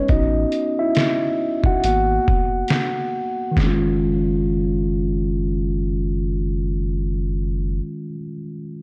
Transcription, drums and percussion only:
0, 0, Header, 1, 2, 480
1, 0, Start_track
1, 0, Key_signature, 6, "major"
1, 0, Tempo, 869565
1, 47, Time_signature, 4, 2, 24, 8
1, 4870, End_track
2, 0, Start_track
2, 0, Title_t, "Drums"
2, 46, Note_on_c, 9, 42, 67
2, 50, Note_on_c, 9, 36, 105
2, 101, Note_off_c, 9, 42, 0
2, 105, Note_off_c, 9, 36, 0
2, 286, Note_on_c, 9, 42, 50
2, 342, Note_off_c, 9, 42, 0
2, 523, Note_on_c, 9, 42, 57
2, 533, Note_on_c, 9, 38, 92
2, 578, Note_off_c, 9, 42, 0
2, 589, Note_off_c, 9, 38, 0
2, 902, Note_on_c, 9, 36, 77
2, 957, Note_off_c, 9, 36, 0
2, 1013, Note_on_c, 9, 42, 90
2, 1068, Note_off_c, 9, 42, 0
2, 1257, Note_on_c, 9, 36, 83
2, 1313, Note_off_c, 9, 36, 0
2, 1479, Note_on_c, 9, 42, 65
2, 1492, Note_on_c, 9, 38, 108
2, 1535, Note_off_c, 9, 42, 0
2, 1548, Note_off_c, 9, 38, 0
2, 1969, Note_on_c, 9, 36, 88
2, 1974, Note_on_c, 9, 38, 83
2, 2025, Note_off_c, 9, 36, 0
2, 2029, Note_off_c, 9, 38, 0
2, 4870, End_track
0, 0, End_of_file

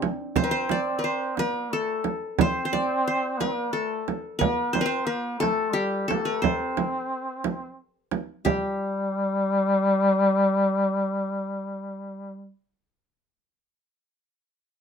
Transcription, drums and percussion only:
0, 0, Header, 1, 2, 480
1, 0, Start_track
1, 0, Tempo, 674916
1, 255, Time_signature, 6, 3, 24, 8
1, 10529, End_track
2, 0, Start_track
2, 0, Title_t, "Frame drum"
2, 17, Note_on_c, 9, 64, 68
2, 88, Note_off_c, 9, 64, 0
2, 253, Note_on_c, 9, 64, 80
2, 324, Note_off_c, 9, 64, 0
2, 494, Note_on_c, 9, 64, 66
2, 565, Note_off_c, 9, 64, 0
2, 977, Note_on_c, 9, 64, 58
2, 1048, Note_off_c, 9, 64, 0
2, 1453, Note_on_c, 9, 64, 62
2, 1524, Note_off_c, 9, 64, 0
2, 1696, Note_on_c, 9, 64, 90
2, 1767, Note_off_c, 9, 64, 0
2, 1941, Note_on_c, 9, 64, 61
2, 2012, Note_off_c, 9, 64, 0
2, 2421, Note_on_c, 9, 64, 59
2, 2492, Note_off_c, 9, 64, 0
2, 2901, Note_on_c, 9, 64, 61
2, 2972, Note_off_c, 9, 64, 0
2, 3137, Note_on_c, 9, 64, 82
2, 3208, Note_off_c, 9, 64, 0
2, 3378, Note_on_c, 9, 64, 66
2, 3449, Note_off_c, 9, 64, 0
2, 3858, Note_on_c, 9, 64, 68
2, 3929, Note_off_c, 9, 64, 0
2, 4343, Note_on_c, 9, 64, 68
2, 4414, Note_off_c, 9, 64, 0
2, 4579, Note_on_c, 9, 64, 76
2, 4650, Note_off_c, 9, 64, 0
2, 4817, Note_on_c, 9, 64, 70
2, 4888, Note_off_c, 9, 64, 0
2, 5294, Note_on_c, 9, 64, 68
2, 5365, Note_off_c, 9, 64, 0
2, 5771, Note_on_c, 9, 64, 70
2, 5842, Note_off_c, 9, 64, 0
2, 6015, Note_on_c, 9, 64, 73
2, 6087, Note_off_c, 9, 64, 0
2, 10529, End_track
0, 0, End_of_file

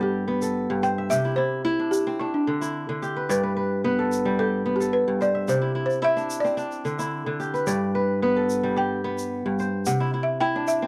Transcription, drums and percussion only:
0, 0, Header, 1, 2, 480
1, 0, Start_track
1, 0, Key_signature, 1, "major"
1, 0, Tempo, 547445
1, 964, Time_signature, 4, 2, 24, 8
1, 9533, End_track
2, 0, Start_track
2, 0, Title_t, "Drums"
2, 369, Note_on_c, 9, 82, 50
2, 457, Note_off_c, 9, 82, 0
2, 730, Note_on_c, 9, 82, 19
2, 818, Note_off_c, 9, 82, 0
2, 972, Note_on_c, 9, 82, 67
2, 1060, Note_off_c, 9, 82, 0
2, 1691, Note_on_c, 9, 82, 65
2, 1778, Note_off_c, 9, 82, 0
2, 2299, Note_on_c, 9, 82, 53
2, 2387, Note_off_c, 9, 82, 0
2, 2656, Note_on_c, 9, 82, 20
2, 2743, Note_off_c, 9, 82, 0
2, 2898, Note_on_c, 9, 82, 69
2, 2986, Note_off_c, 9, 82, 0
2, 3614, Note_on_c, 9, 82, 64
2, 3702, Note_off_c, 9, 82, 0
2, 4219, Note_on_c, 9, 82, 53
2, 4306, Note_off_c, 9, 82, 0
2, 4573, Note_on_c, 9, 82, 19
2, 4660, Note_off_c, 9, 82, 0
2, 4808, Note_on_c, 9, 82, 62
2, 4895, Note_off_c, 9, 82, 0
2, 5174, Note_on_c, 9, 82, 19
2, 5262, Note_off_c, 9, 82, 0
2, 5414, Note_on_c, 9, 82, 19
2, 5502, Note_off_c, 9, 82, 0
2, 5526, Note_on_c, 9, 82, 60
2, 5614, Note_off_c, 9, 82, 0
2, 5657, Note_on_c, 9, 82, 20
2, 5745, Note_off_c, 9, 82, 0
2, 5767, Note_on_c, 9, 82, 19
2, 5854, Note_off_c, 9, 82, 0
2, 5889, Note_on_c, 9, 82, 20
2, 5976, Note_off_c, 9, 82, 0
2, 6008, Note_on_c, 9, 82, 20
2, 6096, Note_off_c, 9, 82, 0
2, 6132, Note_on_c, 9, 82, 49
2, 6220, Note_off_c, 9, 82, 0
2, 6491, Note_on_c, 9, 82, 19
2, 6579, Note_off_c, 9, 82, 0
2, 6618, Note_on_c, 9, 82, 19
2, 6706, Note_off_c, 9, 82, 0
2, 6726, Note_on_c, 9, 82, 63
2, 6814, Note_off_c, 9, 82, 0
2, 7450, Note_on_c, 9, 82, 60
2, 7538, Note_off_c, 9, 82, 0
2, 8052, Note_on_c, 9, 82, 52
2, 8139, Note_off_c, 9, 82, 0
2, 8410, Note_on_c, 9, 82, 21
2, 8498, Note_off_c, 9, 82, 0
2, 8644, Note_on_c, 9, 82, 70
2, 8732, Note_off_c, 9, 82, 0
2, 9364, Note_on_c, 9, 82, 64
2, 9451, Note_off_c, 9, 82, 0
2, 9533, End_track
0, 0, End_of_file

